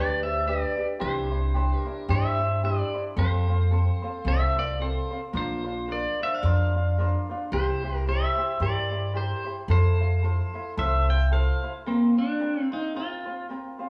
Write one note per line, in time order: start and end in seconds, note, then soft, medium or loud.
0.00 0.63 D2 medium
0.00 0.23 D4 medium
0.00 0.23 G4 medium
0.00 0.22 B4 medium
0.00 0.23 B4 medium
0.00 0.22 D5 medium
0.00 0.23 D5 medium
0.23 0.46 D4 soft
0.23 0.47 G4 soft
0.23 0.46 C5 medium
0.23 0.47 D5 soft
0.23 0.47 E5 medium
0.46 0.77 D4 medium
0.46 0.77 G4 medium
0.46 0.77 B4 medium
0.46 0.87 B4 medium
0.46 0.87 D5 medium
0.46 0.76 D5 medium
0.77 0.98 D4 soft
0.77 0.98 G4 soft
0.77 1.00 D5 medium
0.99 1.72 C2 medium
0.99 1.31 D4 medium
0.99 1.30 E4 medium
0.99 1.31 G4 medium
0.99 2.05 G4 medium
0.99 1.29 C5 medium
0.99 1.78 C5 medium
1.31 1.53 D4 soft
1.31 1.55 E4 soft
1.31 1.55 C5 medium
1.54 1.86 D4 medium
1.54 1.85 E4 medium
1.54 1.85 G4 medium
1.54 1.84 C5 medium
1.78 2.13 A#4 medium
1.85 2.08 D4 soft
1.85 2.08 E4 medium
1.85 2.09 C5 medium
2.09 2.79 G2 medium
2.09 2.40 D4 medium
2.09 2.39 E4 medium
2.09 2.40 G4 medium
2.09 2.39 C5 medium
2.09 2.60 C5 medium
2.09 2.64 E5 medium
2.40 2.63 D4 soft
2.40 2.63 E4 soft
2.40 2.63 C5 soft
2.63 2.95 D4 medium
2.63 2.93 E4 medium
2.63 2.94 G4 medium
2.63 3.03 G4 medium
2.63 2.93 C5 medium
2.63 3.04 D5 medium
2.94 3.17 D4 soft
2.94 3.17 E4 soft
2.94 3.17 C5 soft
3.16 3.87 F2 medium
3.16 3.48 C4 medium
3.16 3.48 F4 medium
3.16 3.48 A4 medium
3.16 4.22 A4 medium
3.16 3.47 C5 medium
3.16 4.30 C5 medium
3.48 3.70 C4 soft
3.48 3.71 F4 soft
3.48 3.72 C5 soft
3.71 4.03 C4 medium
3.71 4.02 F4 medium
3.71 4.02 A4 medium
3.71 4.01 C5 medium
4.02 4.25 C4 soft
4.02 4.26 F4 medium
4.02 4.26 C5 medium
4.25 4.96 C2 medium
4.25 4.57 C4 medium
4.25 4.56 F4 medium
4.25 4.57 A4 medium
4.25 4.55 C5 medium
4.25 4.56 C5 medium
4.25 4.58 E5 loud
4.56 4.80 C4 soft
4.56 4.80 F4 soft
4.56 4.80 A#4 medium
4.56 4.80 C5 soft
4.56 4.82 D5 medium
4.80 5.12 C4 medium
4.80 5.11 F4 medium
4.80 5.11 A4 medium
4.80 5.21 A4 medium
4.80 5.10 C5 medium
4.80 5.21 C5 medium
5.11 5.34 C4 soft
5.11 5.33 F4 soft
5.11 5.33 C5 medium
5.33 6.04 A#1 medium
5.33 5.65 D4 medium
5.33 5.64 F4 medium
5.33 5.85 F4 medium
5.33 5.65 A#4 medium
5.33 5.63 C5 medium
5.37 5.92 C5 loud
5.64 5.87 D4 soft
5.64 5.87 F4 soft
5.64 5.88 C5 medium
5.88 6.19 D4 medium
5.88 6.20 F4 medium
5.88 6.19 A#4 medium
5.88 6.19 C5 medium
5.92 6.22 D5 medium
6.20 6.43 D4 soft
6.20 6.44 F4 soft
6.20 6.43 C5 medium
6.20 6.33 C5 medium
6.20 6.33 E5 medium
6.34 7.10 D5 medium
6.34 7.10 F5 medium
6.43 7.13 F2 medium
6.43 6.75 D4 medium
6.43 6.74 F4 medium
6.43 6.74 A#4 medium
6.43 6.73 C5 medium
6.74 6.98 D4 soft
6.74 6.98 F4 soft
6.74 6.97 C5 soft
6.98 7.29 D4 medium
6.98 7.29 F4 medium
6.98 7.29 A#4 medium
6.98 7.28 C5 medium
7.29 7.52 D4 medium
7.29 7.53 F4 medium
7.29 7.52 C5 medium
7.52 8.22 C2 medium
7.52 7.83 E4 medium
7.52 8.03 G4 medium
7.52 7.83 G4 medium
7.52 7.83 A#4 medium
7.52 7.97 C5 medium
7.52 7.82 C5 medium
7.83 8.06 E4 soft
7.83 8.06 G4 medium
7.83 8.06 C5 medium
7.97 8.08 A#4 medium
8.07 8.37 E4 medium
8.07 8.37 G4 medium
8.07 8.37 A#4 medium
8.07 8.57 C5 medium
8.07 8.35 C5 medium
8.07 8.62 E5 medium
8.36 8.59 E4 soft
8.36 8.59 G4 soft
8.36 8.60 C5 medium
8.60 9.31 G2 medium
8.60 8.91 E4 medium
8.60 8.90 G4 medium
8.60 8.91 A#4 medium
8.60 9.11 A#4 medium
8.60 8.89 C5 medium
8.60 9.12 D5 medium
8.90 9.13 E4 soft
8.90 9.13 G4 soft
8.90 9.14 C5 medium
9.13 9.45 E4 medium
9.13 9.44 G4 medium
9.13 9.55 G4 medium
9.13 9.45 A#4 medium
9.13 9.43 C5 medium
9.13 9.55 C5 medium
9.44 9.69 E4 soft
9.44 9.69 G4 soft
9.44 9.68 C5 medium
9.68 10.39 F2 medium
9.68 9.99 E4 medium
9.68 10.00 F4 medium
9.68 10.00 A4 medium
9.68 10.74 A4 medium
9.68 9.98 C5 medium
9.68 10.75 C5 medium
9.99 10.23 E4 medium
9.99 10.22 F4 soft
9.99 10.23 C5 medium
10.23 10.54 E4 medium
10.23 10.54 F4 medium
10.23 10.54 A4 medium
10.23 10.53 C5 medium
10.54 10.77 E4 medium
10.54 10.77 F4 soft
10.54 10.77 C5 medium
10.77 11.48 C2 medium
10.77 11.09 E4 medium
10.77 11.08 F4 medium
10.77 11.08 A4 medium
10.77 11.07 C5 medium
10.77 11.10 E5 medium
11.09 11.32 E4 soft
11.09 11.31 F4 soft
11.09 11.32 C5 medium
11.09 11.31 E5 medium
11.09 11.32 G5 loud
11.31 11.63 E4 medium
11.31 11.63 F4 medium
11.31 11.62 A4 medium
11.31 11.62 C5 medium
11.31 11.72 C5 medium
11.31 11.72 F5 medium
11.63 11.86 E4 soft
11.63 11.86 F4 soft
11.63 11.86 C5 medium
11.86 12.18 A#3 medium
11.86 12.17 C4 medium
11.86 12.17 F4 medium
11.86 12.17 A#4 medium
11.86 12.15 C5 medium
12.16 12.39 C4 soft
12.16 12.61 D4 medium
12.16 12.40 F4 soft
12.16 12.40 C5 medium
12.39 12.71 C4 medium
12.39 12.71 F4 medium
12.39 12.71 A#4 medium
12.39 12.70 C5 medium
12.61 12.73 C4 medium
12.71 12.95 C4 soft
12.71 12.96 D#4 medium
12.71 12.95 F4 soft
12.71 12.95 C5 soft
12.95 13.26 C4 medium
12.95 13.25 F4 medium
12.95 13.46 F4 medium
12.95 13.25 A#4 medium
12.95 13.24 C5 medium
13.26 13.49 C4 soft
13.26 13.49 F4 soft
13.26 13.49 C5 soft
13.49 13.80 C4 medium
13.49 13.79 F4 medium
13.49 13.80 A#4 medium
13.49 13.78 C5 medium
13.79 13.89 C4 soft
13.79 13.89 F4 medium
13.79 13.89 C5 medium